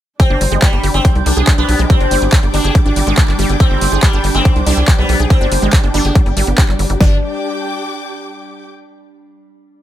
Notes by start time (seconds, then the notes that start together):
0.20 G3 C4 D4, kick, closed hi-hat
0.30 G1 D4
0.34 G4 G5
0.41 G1 G3, open hi-hat
0.52 G1 G#3, closed hi-hat
0.61 G3 D6, kick, clap, closed hi-hat
0.73 G1 D4, closed hi-hat
0.84 G1 G3, open hi-hat
0.94 G1 C4 G#4, closed hi-hat
1.05 G3, kick, closed hi-hat
1.15 C2 G3, closed hi-hat
1.26 C2 G3 D4, open hi-hat
1.37 C2 G#4, closed hi-hat
1.47 G3, kick, clap, closed hi-hat
1.58 B1 B3 D4
1.69 B1 G3, open hi-hat
1.79 B1 G#3, closed hi-hat
1.90 G3 C4, kick, closed hi-hat
2.01 G1 D4, closed hi-hat
2.11 G1 G3, open hi-hat
2.22 G#1 G#4, closed hi-hat
2.32 G3, kick, clap, closed hi-hat
2.43 G1 G3, closed hi-hat
2.54 G1 G3 D4, open hi-hat
2.64 G1 G#4, closed hi-hat
2.75 G3, kick, closed hi-hat
2.86 G#1 D4, closed hi-hat
2.96 G#1 G3, open hi-hat
3.07 G#1 G#3, closed hi-hat
3.18 G3, kick, clap, closed hi-hat
3.28 G1 D4, clap
3.39 G1 G3, open hi-hat
3.49 G1 G#4, closed hi-hat
3.60 G3 C4, kick, closed hi-hat
3.71 G1 G3
3.81 G1 G3, open hi-hat
3.92 G1 G#4, closed hi-hat
4.03 G3, kick, clap, closed hi-hat
4.13 G1 D4, closed hi-hat
4.24 G1 G3, open hi-hat
4.35 G1 G#3 C4, closed hi-hat
4.45 G3, kick, closed hi-hat
4.56 C2 D4, closed hi-hat
4.67 C2 G3 D4, open hi-hat
4.77 C2 G#4, closed hi-hat
4.88 G3, kick, clap, closed hi-hat
4.98 B1 G3 B3
5.09 B1 G3, open hi-hat
5.20 B1 G#4, closed hi-hat
5.30 G3 C4, kick, closed hi-hat
5.41 G1 D4, closed hi-hat
5.52 G1 G3, open hi-hat
5.62 G#1 G#3, closed hi-hat
5.73 G3, kick, clap, closed hi-hat
5.83 G1 D4, closed hi-hat
5.94 G1 G3 D4, open hi-hat
6.05 G1 G#4, closed hi-hat
6.15 G3, kick, closed hi-hat
6.26 G1 G3, closed hi-hat
6.37 G#1 G3, open hi-hat
6.47 G1 B3, closed hi-hat
6.58 G3, kick, clap, closed hi-hat
6.69 G1 G3, clap
6.79 G1 G3, open hi-hat
6.90 G1 G3, closed hi-hat
7.01 G1 G3 D4, kick, snare
7.07 G4
7.13 G5
7.20 D6